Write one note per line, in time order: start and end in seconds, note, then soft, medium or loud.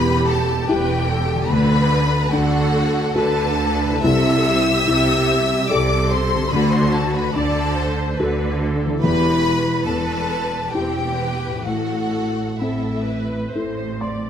0.00 0.59 E1 medium
0.00 0.23 E2 medium
0.00 0.59 E2 medium
0.00 1.46 E2 medium
0.00 1.44 E3 medium
0.00 1.17 B3 medium
0.00 2.84 B3 medium
0.00 1.49 E4 medium
0.00 0.68 G4 medium
0.00 1.51 G4 medium
0.00 0.24 B4 medium
0.00 0.25 B5 loud
0.28 0.69 A4 medium
0.28 0.69 A5 medium
0.68 1.41 E1 medium
0.68 1.41 E2 medium
0.68 1.46 E4 medium
0.68 1.48 G4 medium
0.68 1.47 G4 medium
0.68 1.10 B4 medium
0.68 1.51 G5 medium
1.09 1.50 A4 medium
1.33 3.98 D3 medium
1.37 4.00 D4 medium
1.42 4.03 F#4 medium
1.46 3.99 D2 medium
1.46 3.98 A4 medium
1.46 2.32 B4 medium
1.46 2.31 B4 medium
1.51 2.23 D2 medium
1.51 2.23 D3 medium
1.51 2.33 B5 loud
2.32 3.06 D2 medium
2.32 3.06 D3 medium
2.32 3.68 D4 medium
2.32 3.15 F#4 medium
2.32 3.14 A4 medium
2.32 3.15 F#5 medium
3.15 3.94 D2 medium
3.15 3.93 D3 medium
3.15 3.99 F#4 soft
3.15 4.03 A4 medium
3.15 3.99 A4 medium
3.15 3.58 B4 medium
3.15 4.01 A5 loud
3.59 4.02 B4 medium
3.86 6.46 C3 medium
3.90 6.48 E4 medium
3.95 6.51 G4 medium
3.99 6.45 A4 medium
3.99 4.45 A4 medium
3.99 5.66 E5 medium
4.04 4.77 C2 medium
4.04 6.48 C2 medium
4.04 4.78 C3 medium
4.04 5.66 E6 loud
4.46 5.70 G4 medium
4.87 5.60 C2 medium
4.87 5.61 C3 medium
4.87 6.19 E4 soft
5.69 6.42 C2 medium
5.69 6.42 C3 medium
5.69 6.48 G4 medium
5.69 6.52 A4 medium
5.69 6.48 A4 medium
5.69 6.10 D5 medium
5.69 6.10 D6 loud
6.09 6.51 C5 medium
6.09 6.52 C6 loud
6.33 8.97 D3 medium
6.38 9.00 D4 medium
6.43 9.02 F#4 medium
6.47 9.04 A4 medium
6.51 7.25 D2 medium
6.51 9.00 D2 medium
6.51 7.25 D3 medium
6.51 7.33 F#4 medium
6.51 6.72 B4 medium
6.51 6.72 B5 medium
6.71 6.92 C5 medium
6.71 6.93 C6 medium
6.92 7.14 A4 medium
6.92 7.14 A5 medium
7.13 7.34 B4 medium
7.13 7.36 B5 medium
7.33 8.09 D2 medium
7.33 8.09 D3 medium
7.33 8.70 D4 soft
7.33 8.18 A4 medium
7.33 7.77 D5 medium
7.33 8.19 A5 medium
7.77 8.19 C5 medium
8.18 8.93 D2 medium
8.18 8.93 D3 medium
8.18 8.99 F#4 soft
8.18 9.00 A4 medium
8.18 8.61 B4 medium
8.60 9.03 A4 medium
8.85 11.59 E3 medium
8.89 11.62 B3 soft
8.94 11.54 E4 medium
8.98 11.66 G4 soft
8.98 9.82 B4 medium
8.98 9.82 B5 loud
9.03 9.77 E1 medium
9.03 9.77 E2 medium
9.03 11.61 E2 medium
9.03 9.44 G4 medium
9.45 10.74 B4 medium
9.86 10.63 E1 medium
9.86 10.63 E2 medium
9.86 11.28 B3 soft
9.86 10.74 A4 medium
9.86 10.73 A5 medium
10.72 11.54 E1 medium
10.72 11.54 E2 medium
10.72 11.18 C4 medium
10.72 11.61 E4 soft
10.72 11.64 G4 medium
10.72 11.61 G4 soft
10.72 11.64 G5 medium
11.18 11.65 B4 soft
11.47 14.30 A2 soft
11.51 14.30 C4 soft
11.56 14.30 E4 soft
11.60 12.59 F#4 medium
11.60 14.30 A4 soft
11.65 12.49 A1 medium
11.65 12.49 A2 medium
11.65 14.30 A2 soft
11.65 12.50 A4 medium
11.65 12.58 F#5 medium
12.60 13.43 A1 soft
12.60 13.43 A2 medium
12.60 14.10 C4 soft
12.60 13.54 E4 soft
12.60 13.04 A4 medium
12.60 13.54 E5 medium
13.07 13.53 B4 medium
13.54 14.30 A1 soft
13.54 14.30 A2 soft
13.54 14.30 E4 soft
13.54 14.30 A4 soft
13.54 14.00 C5 medium
13.99 14.30 D5 soft
13.99 14.30 C6 medium
14.27 14.30 E3 soft